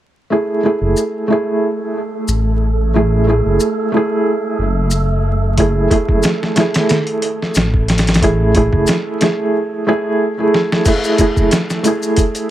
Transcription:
0.30 felt piano A3 E4 G#4, synth texture A3 A4
0.63 felt piano A3 E4 G#4
0.81 detuned saw bass F#1
0.97 maracas
1.28 felt piano A3 E4
1.32 felt piano G#4
2.28 detuned saw bass A1, maracas
2.94 felt piano A3 E4 G#4
3.27 felt piano A3 E4 G#4
3.45 detuned saw bass F#1
3.60 maracas
3.92 felt piano A3 E4
3.97 felt piano G#4
4.59 detuned saw bass F#1
4.91 maracas
5.58 felt piano A3 E4 G#4, kick, closed hi-hat
5.90 felt piano A3 E4 G#4, kick, closed hi-hat
6.08 detuned saw bass F#1, kick
6.23 snare, closed hi-hat, maracas
6.43 snare
6.56 felt piano A3 E4, snare, closed hi-hat
6.60 felt piano G#4
6.74 snare, closed hi-hat
6.89 snare, closed hi-hat
7.07 closed hi-hat
7.22 closed hi-hat
7.42 snare
7.55 detuned saw bass A1, snare, closed hi-hat, maracas
7.74 kick
7.88 snare, closed hi-hat
7.98 snare, closed hi-hat
8.07 snare, closed hi-hat
8.14 snare, closed hi-hat
8.22 felt piano A3 E4 G#4, kick, closed hi-hat
8.55 felt piano A3 E4 G#4, kick, closed hi-hat
8.72 detuned saw bass F#1, kick
8.87 snare, closed hi-hat, maracas
9.21 felt piano A3 E4 G#4, snare, closed hi-hat
9.87 felt piano A3 E4 G#4
10.38 felt piano A3 E4 G#4
10.54 snare
10.72 snare
10.85 felt piano A3 E4 G#4, kick, closed hi-hat, crash, maracas
11.04 maracas
11.18 felt piano A3 E4 G#4, kick, closed hi-hat, maracas
11.37 detuned saw bass F#1, kick, maracas
11.51 snare, closed hi-hat, maracas
11.70 snare, maracas
11.83 felt piano A3 E4, closed hi-hat, maracas
11.87 felt piano G#4
12.03 maracas
12.16 kick, closed hi-hat, maracas
12.35 closed hi-hat, maracas

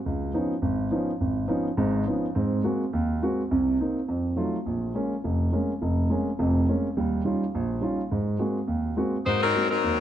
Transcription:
0.06 grand piano C#2
0.33 grand piano F3 B3 C#4 D#4
0.62 grand piano G#1
0.91 grand piano F3 B3 C#4 D#4
1.21 grand piano G#1
1.48 grand piano F3 B3 C#4 D#4
1.77 grand piano G#1 G#2
2.07 grand piano F3 B3 C#4 D#4
2.35 grand piano G#2 C4
2.64 grand piano G#3 A#3 C4 F#4
2.93 grand piano D#2
3.22 grand piano G#3 A#3 C4 F#4
3.51 grand piano C2 C3
3.80 grand piano A#3 C4 D#4
4.08 grand piano F2
4.36 grand piano F#3 A3 D#4 F4
4.66 grand piano A#1
4.95 grand piano G#3 A#3 C#4
5.24 grand piano F1
5.52 grand piano G#3 A#3 C#4
5.82 grand piano F1
6.10 grand piano G#3 A#3 C#4
6.39 grand piano F1 F2
6.68 grand piano G#3 A#3 C#4
6.97 grand piano D#2 G3
7.25 grand piano G3 C#4 D#4 F4
7.55 grand piano A#1
7.81 grand piano G3 C#4 D#4 F4
8.11 grand piano G#2
8.39 grand piano G#3 A#3 C4 F#4
8.68 grand piano D#2
8.97 grand piano G#3 A#3 C4 F#4
9.26 grand piano G#2, saxophone section A#3 D#4 F#4 C5
9.42 saxophone section F#3 C4 D#4 A#4
9.55 grand piano G#3 A#3 C4 F#4
9.70 saxophone section F#3 C4 D#4 A#4
9.84 grand piano D#2

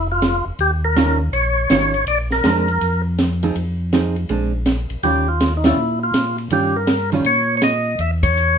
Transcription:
Already playing: tonewheel organ F1
0.12 tonewheel organ F4
0.22 snare, hi-hat pedal, ride
0.46 tonewheel organ F1
0.59 tonewheel organ D#2 G4, ride
0.85 tonewheel organ A#4
0.96 hollow-body jazz guitar D#3 G3 C#4 F4, snare, hi-hat pedal, ride
1.32 tonewheel organ A#1 C#5, ride
1.70 tonewheel organ G#1 C#5, hollow-body jazz guitar D#3 G3 C#4 F4, snare, hi-hat pedal, ride
1.94 ride
2.07 tonewheel organ A#1 D5, ride
2.31 tonewheel organ A#4, snare
2.44 tonewheel organ F2, hollow-body jazz guitar G#3 C4 D4, snare, hi-hat pedal, ride
2.68 ride
2.81 tonewheel organ F2, ride
3.18 snare, hi-hat pedal, ride
3.43 hollow-body jazz guitar F3 C4 D#4 G#4, ride
3.55 tonewheel organ F2, ride
3.92 hollow-body jazz guitar F3 C4 D#4 G#4, snare, hi-hat pedal, ride
4.16 ride
4.29 tonewheel organ A#1, hollow-body jazz guitar G#3 C4 D4, ride
4.66 snare, hi-hat pedal, ride
4.90 tonewheel organ A#1, ride
5.03 tonewheel organ D#2 G4, hollow-body jazz guitar D#3 G3 C#4 F4, ride
5.28 tonewheel organ F4
5.40 snare, hi-hat pedal, ride
5.57 tonewheel organ D#4
5.64 hollow-body jazz guitar D#3 G3 C#4 F4, tonewheel organ E4, snare, ride
5.77 tonewheel organ A#2
6.03 tonewheel organ F4
6.14 tonewheel organ A#2, snare, hi-hat pedal, ride
6.38 ride
6.50 tonewheel organ G2 G4, hollow-body jazz guitar D#3 G3 C#4 F4, ride
6.76 tonewheel organ A#4
6.87 snare, hi-hat pedal, ride
7.12 hollow-body jazz guitar D#3 G3 C#4 F4, ride
7.24 tonewheel organ A#2 C#5, ride
7.57 tonewheel organ C#5
7.62 tonewheel organ D#5, snare, hi-hat pedal, ride
7.99 tonewheel organ E2 E5, ride
8.23 tonewheel organ C#5, kick, ride
8.37 hi-hat pedal

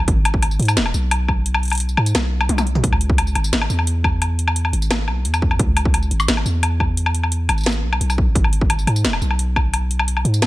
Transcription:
0.08 808-style bass G#1, kick, closed hi-hat
0.25 closed hi-hat, low woodblock
0.34 kick
0.42 closed hi-hat, low woodblock
0.51 tambourine
0.59 808-style bass G#2, closed hi-hat
0.62 closed hi-hat
0.65 closed hi-hat, tambourine, low woodblock
0.77 808-style bass D#1, snare, closed hi-hat
0.86 low woodblock
0.94 808-style bass B1, tambourine
1.11 closed hi-hat, low woodblock
1.28 kick, low woodblock
1.46 closed hi-hat
1.54 low woodblock
1.63 closed hi-hat
1.65 closed hi-hat
1.68 closed hi-hat
1.70 closed hi-hat, low woodblock
1.73 closed hi-hat
1.75 closed hi-hat
1.78 closed hi-hat
1.80 closed hi-hat
1.89 tambourine
1.97 808-style bass G#2, low woodblock
2.06 closed hi-hat, tambourine
2.15 808-style bass B1, snare, closed hi-hat, low woodblock
2.41 low woodblock
2.49 808-style bass B1, closed hi-hat, high tom
2.58 high tom, tambourine, low woodblock
2.67 closed hi-hat
2.75 mid tom, tambourine
2.84 808-style bass C#2, kick, closed hi-hat
2.93 low woodblock
3.01 closed hi-hat
3.10 kick
3.18 closed hi-hat, low woodblock
3.27 tambourine
3.35 808-style bass G#1, closed hi-hat, low woodblock
3.44 tambourine
3.52 808-style bass G#1, snare, closed hi-hat
3.62 low woodblock
3.70 808-style bass E2, tambourine
3.79 low woodblock
3.87 closed hi-hat
4.04 kick, low woodblock
4.22 closed hi-hat, low woodblock
4.39 closed hi-hat
4.48 low woodblock
4.56 closed hi-hat
4.65 low woodblock
4.73 808-style bass G#1, closed hi-hat
4.82 tambourine
4.91 snare, closed hi-hat, low woodblock
5.08 808-style bass B1, low woodblock
5.25 808-style bass E2, closed hi-hat
5.34 tambourine, low woodblock
5.42 kick
5.51 low woodblock
5.59 808-style bass C#2, kick, closed hi-hat
5.77 closed hi-hat, low woodblock
5.85 kick
5.94 closed hi-hat, low woodblock
6.03 tambourine
6.11 808-style bass G#1, closed hi-hat
6.20 tambourine, low woodblock
6.28 808-style bass G#1, snare, closed hi-hat
6.37 low woodblock
6.45 808-style bass E2, tambourine
6.63 closed hi-hat, low woodblock
6.80 kick, low woodblock
6.97 closed hi-hat
7.06 low woodblock
7.15 closed hi-hat
7.24 low woodblock
7.32 closed hi-hat
7.49 808-style bass G#1, closed hi-hat, low woodblock
7.58 tambourine
7.61 tambourine
7.64 snare, closed hi-hat, tambourine
7.66 tambourine, low woodblock
7.69 tambourine
7.72 tambourine
7.83 808-style bass B1
7.93 low woodblock
8.01 808-style bass B1, closed hi-hat
8.10 tambourine, low woodblock
8.18 kick
8.27 808-style bass G#1
8.35 808-style bass G#1, kick, closed hi-hat
8.44 low woodblock
8.53 closed hi-hat
8.61 kick
8.70 closed hi-hat, low woodblock
8.79 tambourine
8.87 808-style bass G#2, closed hi-hat, low woodblock
8.96 tambourine
9.04 808-style bass D#1, snare, closed hi-hat
9.13 low woodblock
9.21 808-style bass B1, tambourine
9.31 low woodblock
9.39 closed hi-hat
9.56 kick, low woodblock
9.74 closed hi-hat, low woodblock
9.91 closed hi-hat
9.99 low woodblock
10.08 closed hi-hat
10.17 low woodblock
10.25 808-style bass G#2, closed hi-hat
10.34 tambourine
10.42 snare, closed hi-hat, low woodblock

